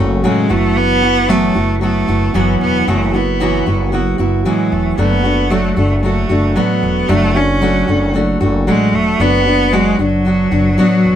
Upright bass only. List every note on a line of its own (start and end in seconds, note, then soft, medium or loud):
0.00 0.22 F#1 loud
0.24 0.48 A1 medium
0.50 1.52 F#1 loud
1.56 2.04 F#1 medium
2.09 2.33 F#1 loud
2.35 2.59 F#1 loud
2.61 2.85 E1 loud
2.88 3.63 F#1 loud
3.67 4.15 F#1 loud
4.19 4.43 F#1 loud
4.46 4.70 A1 medium
4.72 4.96 E1 medium
4.98 5.73 F#1 loud
5.77 6.26 F#1 loud
6.30 6.54 F#1 loud
6.56 6.80 A1 loud
6.83 7.07 E1 loud
7.09 7.84 F#1 loud
7.88 8.37 F#1 loud
8.41 8.65 F#1 loud
8.67 8.91 A1 loud
8.93 9.18 E1 medium
9.20 9.95 F#1 loud
9.99 10.48 F#1 medium
10.52 10.76 F#1 loud
10.78 11.03 A1 medium
11.05 11.15 E1 medium